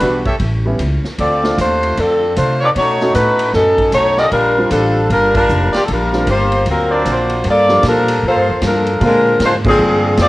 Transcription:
Already playing: G3 D4 F#4 B4
0.00 B1 E3 G3 B3 D4 F#4, kick, hi-hat pedal, ride
0.25 G4 A4 C#5 E5, kick, ride
0.39 A1 A2 G3 C#4 E4, kick, ride
0.66 G3 B3 C#4 E4
0.79 C#2 A2 G3 C#4 E4, kick, hi-hat pedal, ride
1.04 muted upright bass stroke, snare
1.18 D2 D3 A3 C4 F4 A4 D5, kick, ride
1.22 F4
1.43 A3 C4 D4 F4, snare
1.58 D#2 D3 A3 C4 D4 F4 C5, kick, hi-hat pedal, ride
1.83 ride
1.97 F2 D3 F3 A3 C4 D4 F4 A4, kick, ride
2.36 C3 D3 A3 C4 D4 F4 C5, kick, hi-hat pedal, ride
2.61 C4 D#4 F4 A4 B4 C#5
2.65 A4 D5
2.75 B2 A3 C#4 D#4 F#4 C#5, kick, ride
3.01 A3 C#4 D#4 F#4, snare
3.14 A2 B2 A3 C#4 D#4 F#4 B4, kick, hi-hat pedal, ride
3.39 ride
3.53 F#2 B2 F#3 A3 C#4 D#4 A4, kick, snare
3.78 kick, ride
3.92 B1 B2 A3 C#4 D#4 F#4 C#5, kick, hi-hat pedal, ride
4.17 C#4 F4 F#4 G4 A4 A#4 D5 D#5, snare
4.31 A#1 A#2 G3 D4 F4 A#4, kick, ride
4.58 G3 C4 D4 F4
4.70 A1 A#2 G3 D4 F4 A4, kick, hi-hat pedal, ride
5.09 G1 A#2 G3 D4 F4 A#4, kick, ride
5.35 G3 D4 F4 A#4, kick, ride
5.49 F1 A#2 G3 D4 F4, hi-hat pedal
5.73 F3 A#3 D4 F4 G4 A#4 D5, muted upright bass stroke, snare, ride
5.85 A#1 A#2 A4, kick, ride
5.89 G3 D4 F4 A#4
5.93 G3 D4 F4
6.13 G3 C4 D4 F4, snare
6.27 G1 A#2 G3 D4 F4 G4 C5, kick, hi-hat pedal, ride
6.31 A#3 F4
6.52 ride
6.66 D2 D3 A#3 C4 F#4, kick, ride
6.71 F#3 C4 F4 A#4
6.90 D4 A#4 C5 D5
7.04 A#1 D3 A#3 A#4, kick, hi-hat pedal, ride
7.08 A#3 C4 F#4 C5
7.12 F4
7.30 ride
7.44 G2 G3 A#3 F4 A4, kick, ride
7.50 A#3 F4 A4 D5
7.69 F3 G3 A#3 D4 F4, snare
7.83 A#2 G3 A#3 F4 A4, kick, snare, hi-hat pedal, ride
7.88 F3 D4 A4 A#4
8.08 ride
8.23 A2 G3 A#3 F4 A4, kick
8.28 A#3 F4 A4 C5
8.36 G2
8.49 F2
8.62 G2 G3 A#3 F4 A4, kick, snare, hi-hat pedal, ride
8.66 F3 D4 A4 A#4
8.87 ride
9.00 A#2 D3 G#3 A#3 C4 D4 F4, kick, ride
9.05 G#3 D4 F4 A#4
9.39 G#2 A#2 G#3 C4 D4, kick, snare, hi-hat pedal, ride
9.45 G#3 D4 F4 C5
9.64 D3 A#3 C4 F4 G#4, kick, crash
9.68 F3 C4 D4 G#4
9.79 G2 A#2 G#3 C4 D4
10.17 F2 A#2 G#3 C4 D4 G#4, kick, snare, hi-hat pedal, ride
10.21 C4 F4 D5

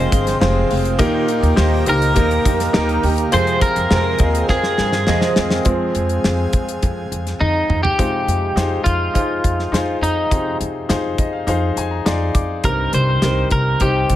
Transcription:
Already playing: C3 F3 G#3 C4 F4 G#4 A#4 C5 D#5 G5 C6
0.12 G1 F3 G#3 C4 F4, kick, closed hi-hat
0.27 snare, closed hi-hat
0.40 F1 F2 C3 F3 G#3 C4 F4 G#4 C5, snare
0.70 F1 F3 G#3 C4 F4, open hi-hat
0.85 closed hi-hat
0.98 D#2 A#2 D#3 A#3 D#4 G4 A#4 D#5 A#5, kick, closed hi-hat
1.28 A#3 D#4 G4, closed hi-hat
1.42 D#2, closed hi-hat
1.56 D#2 D#3 A#3 D#4 G4 C5, snare
1.86 C#2 A#3 D#4 G4 A#4 C5, closed hi-hat
2.02 closed hi-hat
2.14 D#2 D#3 A#3 D#4 G4 A#4, kick, closed hi-hat
2.18 G4
2.31 closed hi-hat
2.45 F2 A#3 D#4 G4, kick, closed hi-hat
2.60 snare, closed hi-hat
2.73 D#2 D#3 A#3 D#4 G4 A#4, snare
2.77 G4
2.89 closed hi-hat
3.03 D#2 A#3 D#4 G4, open hi-hat
3.18 closed hi-hat
3.32 F2 C3 F3 G#3 C4 F4 G#4 C5 F5 C6, closed hi-hat
3.47 closed hi-hat
3.61 F3 G#3 C4 G#4 A#4, kick, closed hi-hat
3.76 F2, closed hi-hat
3.91 F2 C3 F3 G#3 C4 F4 G#4 A#4, snare
4.19 D#2 F3 G#3 C4 F4 G#4 D#5, kick, closed hi-hat
4.35 closed hi-hat
4.48 F2 F3 G#3 C4 F4 G#4 A#4, kick, snare
4.63 snare
4.78 G2 F3 G#3 C4 G#4, snare
4.92 snare
5.07 F2 C3 F3 G#3 C4 F4 G#4 D#5, snare
5.21 snare
5.36 F2 F3 G#3 C4 G#4, snare
5.50 snare
5.65 F2 F3 G#3 C4 G#4 F5 G#5, kick, closed hi-hat
5.95 F2, closed hi-hat
6.09 closed hi-hat
6.24 F2, snare
6.53 F2, kick, closed hi-hat
6.69 closed hi-hat
6.82 F2, kick, closed hi-hat
7.11 F2, closed hi-hat
7.27 snare, closed hi-hat
7.41 F2 D#4, high tom
7.69 F2, mid tom
7.83 G4, floor tom
7.99 F2 C3 G#3 D#4 F4 C5, kick, closed hi-hat
8.27 F2, closed hi-hat
8.56 F2 D#4 F4 G#4 C5, snare, closed hi-hat
8.84 F2 F4, kick, closed hi-hat
9.14 F2 D#4 F4 G#4 C5, kick, closed hi-hat
9.44 F2, kick, closed hi-hat
9.59 snare
9.72 F2 D#4 F4 G#4 C5, snare, closed hi-hat
10.01 F2 D#4, closed hi-hat
10.31 F2 C3 D#4 F4 G#4 C5, kick, closed hi-hat
10.60 F2, closed hi-hat
10.89 F2 D#4 F4 G#4 C5, snare, closed hi-hat
11.18 F2 D#5, kick, closed hi-hat
11.33 F5
11.47 F2 D#4 F4 G#4 C5 F5, closed hi-hat
11.76 F2 G#5, closed hi-hat
11.91 A#5
12.06 F2 D#4 F4 G#4 D5 C6, snare, closed hi-hat
12.34 F2 D6, kick, closed hi-hat
12.64 C2 G2 C4 D#4 G4 A#4, kick, closed hi-hat
12.93 C2 C5, closed hi-hat
13.22 C2 C4 D#4 G4 A#4, snare, closed hi-hat
13.51 C2 A#4, kick, closed hi-hat
13.80 C2 C4 D#4 G4 C5, kick, closed hi-hat
14.09 C2, kick, closed hi-hat

